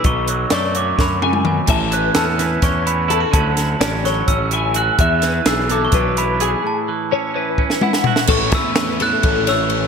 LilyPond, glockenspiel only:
\new Staff \with { instrumentName = "Glockenspiel" } { \time 7/8 \key a \major \tempo 4 = 127 cis'''4 cis'''8 d'''8 b''4 gis''8 | a''8 fis'''8 e'''4 cis'''8 b''4 | a''4. cis'''8 e'''4 fis'''8 | fis'''4 e'''8 d'''16 cis'''8. b''4 |
a''4 r2 r8 | cis'''8 e'''4 fis'''4 e'''4 | }